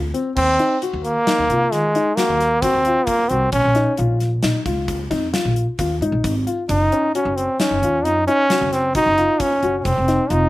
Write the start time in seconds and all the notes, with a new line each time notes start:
Already playing: D2
0.14 C4, closed hi-hat
0.36 D#2 C4, kick, crash
0.59 D#4, closed hi-hat
0.82 F#4, closed hi-hat
0.93 D#2
1.04 A#3, closed hi-hat
1.27 D#4, snare, closed hi-hat
1.39 D#2
1.50 C3 F4, closed hi-hat
1.72 D#3 G#3, snare, closed hi-hat
1.95 D#4, closed hi-hat
2.16 A#3 F#4, snare, closed hi-hat
2.29 D#2
2.40 snare, closed hi-hat
2.62 C4 F#4, kick, snare, closed hi-hat
2.74 D#2
2.85 F4, closed hi-hat
3.06 A#3, kick, closed hi-hat
3.29 C2 C4 F#4, closed hi-hat
3.52 A#1 C#4, kick, closed hi-hat
3.65 A#1
3.75 D#4, snare, closed hi-hat
3.97 A#1 F4, closed hi-hat
4.20 snare, closed hi-hat
4.43 A#2 D#4, snare, closed hi-hat
4.66 C#2 F4, kick, closed hi-hat
4.88 kick, closed hi-hat
5.11 F2 D#4, kick, snare, closed hi-hat
5.33 F4, snare, closed hi-hat
5.45 A#1
5.56 closed hi-hat
5.79 D#2 F4, kick, closed hi-hat
6.01 G#2 D#4, closed hi-hat
6.12 A#1
6.24 G#1, kick, closed hi-hat
6.47 F4, closed hi-hat
6.69 F#1 D#4, kick, closed hi-hat
6.92 C#4, closed hi-hat
7.15 C#4 F#4, closed hi-hat
7.25 F#1
7.36 C4, closed hi-hat
7.60 C#4 D#4, snare, closed hi-hat
7.71 F#1
7.82 D#2 F4, closed hi-hat
8.04 F#2 D#4, closed hi-hat
8.27 C#4 D#4, closed hi-hat
8.50 F#4, snare, closed hi-hat
8.61 F#1
8.72 C4, snare, closed hi-hat
8.95 D#4 F#4, kick, closed hi-hat
9.06 F#1
9.18 F4, closed hi-hat
9.40 C#4, kick, closed hi-hat
9.63 F#1 F#4, closed hi-hat
9.78 C#4
9.84 F1 C4, kick, closed hi-hat
9.97 F1
10.08 D#4, snare, closed hi-hat
10.30 F1 D#4 F4, closed hi-hat